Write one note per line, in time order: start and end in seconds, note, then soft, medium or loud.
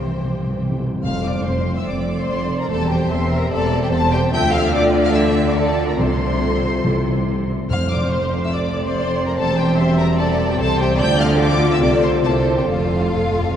0.00 0.80 C2 medium
0.00 0.60 E3 medium
0.00 0.79 G3 soft
0.00 0.79 C4 soft
0.00 0.80 G4 soft
0.00 0.80 C5 soft
0.00 0.82 C5 soft
0.00 0.80 G5 soft
0.07 0.14 C3 soft
0.15 0.22 C3 soft
0.24 0.30 C3 medium
0.31 0.37 C3 soft
0.39 0.45 C3 soft
0.47 0.53 C3 medium
0.55 0.60 C3 medium
0.62 0.69 C3 medium
0.70 0.77 C3 medium
0.78 0.85 C3 medium
0.86 0.93 C3 medium
0.94 1.01 C3 medium
1.03 1.40 F1 medium
1.03 1.62 F2 medium
1.03 1.41 F2 medium
1.03 1.42 A3 medium
1.03 1.42 C4 medium
1.03 1.83 C5 medium
1.03 1.23 F5 medium
1.03 1.23 F6 medium
1.24 1.46 D5 medium
1.24 1.45 D6 medium
1.45 1.82 F1 medium
1.45 1.82 F2 medium
1.45 2.68 A3 medium
1.45 2.68 C4 medium
1.45 1.76 C5 medium
1.45 1.76 C6 medium
1.76 1.87 E5 medium
1.76 1.87 E6 medium
1.86 2.24 F1 medium
1.86 2.24 F2 medium
1.86 1.94 D5 medium
1.86 2.69 D5 medium
1.86 2.19 D6 medium
2.18 2.59 C5 medium
2.18 2.61 C6 medium
2.29 2.66 F1 medium
2.29 2.66 F2 medium
2.60 2.71 A#4 medium
2.60 2.70 A#5 medium
2.70 3.07 E1 medium
2.70 3.07 E2 medium
2.70 3.10 G3 medium
2.70 3.10 C4 medium
2.70 2.91 A4 medium
2.70 3.11 C5 medium
2.70 2.90 A5 loud
2.90 3.11 G4 medium
2.90 3.12 G5 medium
3.11 3.48 E1 medium
3.11 3.48 E2 medium
3.11 4.31 G3 medium
3.11 4.31 C4 medium
3.11 3.32 C5 medium
3.11 3.52 E5 medium
3.11 3.32 C6 medium
3.32 3.52 A#4 medium
3.32 3.53 A#5 medium
3.51 3.88 E1 medium
3.51 3.88 E2 medium
3.51 3.81 A4 medium
3.51 3.93 D5 medium
3.51 3.82 A5 medium
3.82 3.86 G4 medium
3.82 3.93 G5 medium
3.91 4.29 E1 medium
3.91 4.29 E2 medium
3.91 3.99 A4 medium
3.91 4.33 C5 medium
3.91 4.12 A5 loud
4.13 4.21 G4 medium
4.13 4.34 G5 loud
4.33 5.95 D2 medium
4.33 5.96 D3 medium
4.33 4.73 A3 medium
4.33 4.74 F4 medium
4.33 4.74 E5 loud
4.33 4.54 G5 loud
4.33 4.41 G6 loud
4.54 4.74 F5 loud
4.54 4.74 F6 loud
4.74 5.55 A3 medium
4.74 5.55 F4 medium
4.74 5.55 D5 medium
4.74 5.05 D5 medium
4.74 4.83 D6 loud
5.05 5.16 F5 medium
5.05 5.09 F6 loud
5.14 5.46 E5 medium
5.14 5.22 E6 loud
5.46 5.57 D5 medium
5.46 5.57 D6 medium
5.56 5.98 A3 medium
5.56 5.98 F4 medium
5.56 5.89 A4 medium
5.56 5.98 D5 medium
5.56 5.88 A5 loud
5.88 5.99 A#4 medium
5.88 5.99 A#5 medium
5.98 6.83 C2 medium
5.98 6.59 C3 medium
5.98 6.83 C3 medium
5.98 6.83 A3 medium
5.98 6.83 F4 medium
5.98 7.46 A4 medium
5.98 7.49 C5 medium
5.98 7.48 C6 loud
6.84 7.49 C2 medium
6.84 7.45 C3 medium
6.84 7.49 C3 medium
6.84 7.48 G3 soft
6.84 7.49 E4 medium
7.69 9.33 F1 medium
7.69 8.30 F2 medium
7.69 9.34 F2 medium
7.69 9.33 A3 medium
7.69 10.96 C4 medium
7.69 8.51 C5 medium
7.69 7.79 F5 medium
7.69 7.90 F6 loud
7.91 8.12 D5 medium
7.91 8.13 D6 loud
8.12 8.43 C5 medium
8.12 8.44 C6 medium
8.44 8.48 E5 medium
8.44 8.55 E6 medium
8.54 8.62 D5 medium
8.54 9.35 D5 medium
8.54 8.86 D6 medium
8.84 9.25 C5 medium
8.84 9.27 C6 medium
9.26 9.37 A#4 medium
9.26 9.37 A#5 medium
9.36 10.57 E1 medium
9.36 10.57 E2 medium
9.36 10.97 G3 medium
9.36 9.57 A4 loud
9.36 9.77 C5 medium
9.36 9.58 A5 loud
9.58 9.78 G4 medium
9.58 9.78 G5 loud
9.78 9.99 C5 medium
9.78 10.19 E5 medium
9.78 9.98 C6 loud
9.97 10.05 A#4 loud
9.97 10.18 A#5 loud
10.19 10.49 A4 loud
10.19 10.59 D5 medium
10.19 10.27 A5 loud
10.49 10.59 G4 medium
10.49 10.60 G5 medium
10.59 11.00 C2 medium
10.59 11.00 C3 medium
10.59 10.80 A4 loud
10.59 11.00 C5 loud
10.59 10.80 A5 loud
10.80 10.89 G4 medium
10.80 11.00 G5 loud
10.99 11.82 D2 loud
10.99 11.82 D3 loud
10.99 12.24 A3 medium
10.99 12.22 F4 medium
10.99 11.41 D5 loud
10.99 11.20 G5 loud
10.99 11.21 G6 loud
11.20 11.28 F5 medium
11.20 11.41 F6 loud
11.40 11.82 F4 medium
11.40 11.71 D5 medium
11.40 11.71 D6 loud
11.72 11.82 E5 loud
11.72 11.83 E6 loud
11.81 12.23 C2 medium
11.81 12.22 C3 medium
11.81 12.24 A4 medium
11.81 12.03 D5 loud
11.81 11.91 D6 loud
12.03 12.24 C5 medium
12.03 12.11 C6 loud
12.23 12.67 C2 medium
12.23 12.67 C3 medium
12.23 12.68 A#3 medium
12.23 12.68 E4 medium
12.23 12.56 A4 medium
12.23 12.67 C5 loud
12.23 12.32 A5 loud
12.57 12.61 G4 medium
12.57 12.68 G5 medium
12.67 13.56 F1 medium
12.67 13.56 F2 medium
12.67 12.74 F2 soft
12.67 13.56 A3 medium
12.67 13.56 F4 medium
12.67 13.56 A4 medium
12.67 13.56 F5 loud
12.76 12.83 F2 soft
12.84 12.91 F2 soft
12.92 12.99 F2 soft
13.00 13.06 F2 soft
13.08 13.15 F2 soft
13.17 13.23 F2 soft
13.24 13.31 F2 soft
13.32 13.39 F2 soft
13.40 13.47 F2 medium
13.48 13.55 F2 medium